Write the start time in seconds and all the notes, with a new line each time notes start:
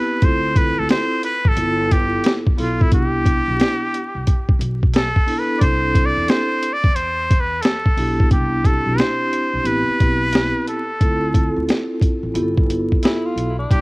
Already playing: B3 C4 E4 G4 B4
0.20 D2 C4 E4 F4 A4, kick, closed hi-hat
0.25 C5
0.56 B4, kick, closed hi-hat
0.79 D2 A4
0.89 C5, snare, closed hi-hat
1.23 B4, closed hi-hat
1.45 A1 A4, kick
1.56 G1 B3 E4 F4 A4, closed hi-hat
1.91 G4, kick, closed hi-hat
2.24 snare, closed hi-hat
2.47 kick
2.57 B1 B3 E4 F4 A4, open hi-hat
2.81 E4, kick
2.92 C2 B3 D4 E4 G4, kick, closed hi-hat
3.26 kick, closed hi-hat
3.48 B1
3.60 snare, closed hi-hat
3.94 closed hi-hat
4.15 C2
4.27 kick, closed hi-hat
4.49 muted upright bass stroke, kick
4.59 B1, closed hi-hat
4.83 kick
4.94 A4, snare, closed hi-hat
5.16 kick
5.26 B3 D4 E4 A4, open hi-hat
5.39 B4
5.58 C2 C4 D4 E4 C5 D5, kick, closed hi-hat
5.95 kick, closed hi-hat
6.06 D5
6.16 E2
6.28 C5, snare, closed hi-hat
6.63 closed hi-hat
6.73 D5
6.84 E2, kick
6.96 C5, closed hi-hat
7.31 kick, closed hi-hat
7.41 B4
7.62 A4, snare, closed hi-hat
7.86 kick
7.96 B1 B3 D4 E4 G4, open hi-hat
8.20 kick
8.30 C2 B3 D4 E4 G4, kick, closed hi-hat
8.64 C4 D4 E4 G4 A4, kick, closed hi-hat
8.86 B1
8.98 C5, snare, closed hi-hat
9.33 closed hi-hat
9.54 C2
9.64 A1 B3 C4 E4 G4 B4, closed hi-hat
9.88 muted upright bass stroke
10.00 B1, kick, closed hi-hat
10.33 snare, closed hi-hat
10.67 A4, closed hi-hat
11.01 D2 C4 E4 F4 A4, kick, closed hi-hat
11.33 C4 E4 F4 A4, kick, closed hi-hat
11.56 D2
11.69 snare, closed hi-hat
12.01 kick, closed hi-hat
12.23 A1
12.34 G1 B3 E4 F4 G4, closed hi-hat
12.43 A4
12.58 kick
12.70 closed hi-hat
12.92 kick
13.03 E4, snare, closed hi-hat
13.25 F4
13.36 B1, closed hi-hat
13.59 D4
13.70 C2 B3 D4 E4 G4, kick, closed hi-hat